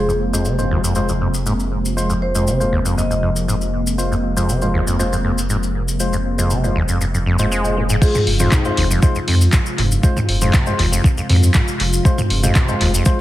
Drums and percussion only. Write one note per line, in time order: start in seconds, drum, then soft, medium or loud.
0.09 maracas soft
0.34 maracas medium
0.45 maracas medium
0.59 maracas soft
0.84 maracas medium
0.95 maracas medium
1.09 maracas soft
1.34 maracas medium
1.46 maracas medium
1.60 maracas soft
1.85 maracas medium
1.98 maracas medium
2.10 maracas soft
2.35 maracas medium
2.47 maracas medium
2.61 maracas soft
2.86 maracas medium
2.98 maracas medium
3.11 maracas soft
3.36 maracas medium
3.49 maracas medium
3.61 maracas soft
3.87 maracas medium
3.99 maracas medium
4.12 maracas soft
4.37 maracas medium
4.49 maracas medium
4.62 maracas soft
4.87 maracas medium
5.00 maracas medium
5.13 maracas soft
5.38 maracas medium
5.50 maracas medium
5.63 maracas soft
5.88 maracas medium
6.00 maracas medium
6.13 maracas soft
6.39 maracas medium
6.50 maracas medium
6.64 maracas soft
6.88 maracas medium
7.01 maracas medium
7.14 maracas soft
7.39 maracas medium
7.52 maracas medium
7.65 maracas soft
7.89 maracas medium
8.02 kick loud
8.02 crash loud
8.02 maracas medium
8.15 mid tom medium
8.15 maracas soft
8.27 open hi-hat loud
8.39 mid tom medium
8.39 maracas medium
8.52 kick loud
8.52 clap loud
8.52 maracas medium
8.65 maracas soft
8.77 open hi-hat loud
8.91 maracas medium
9.03 kick loud
9.03 maracas medium
9.15 maracas soft
9.28 open hi-hat loud
9.41 maracas medium
9.53 kick loud
9.53 clap loud
9.53 maracas medium
9.66 maracas soft
9.78 mid tom loud
9.78 open hi-hat loud
9.92 maracas medium
10.03 kick loud
10.03 maracas medium
10.17 mid tom loud
10.17 maracas soft
10.29 open hi-hat loud
10.41 mid tom medium
10.41 maracas medium
10.53 kick loud
10.53 clap loud
10.53 maracas medium
10.66 maracas soft
10.79 open hi-hat loud
10.93 maracas medium
11.04 kick loud
11.04 maracas medium
11.17 maracas soft
11.29 mid tom loud
11.29 open hi-hat loud
11.43 maracas medium
11.54 kick loud
11.54 clap loud
11.54 maracas medium
11.68 maracas soft
11.80 open hi-hat loud
11.93 maracas medium
12.05 kick loud
12.05 maracas medium
12.18 mid tom medium
12.18 maracas soft
12.30 open hi-hat loud
12.43 mid tom medium
12.43 maracas medium
12.55 kick loud
12.55 clap loud
12.55 maracas medium
12.68 maracas soft
12.81 open hi-hat loud
12.94 maracas medium
13.05 kick loud
13.05 maracas medium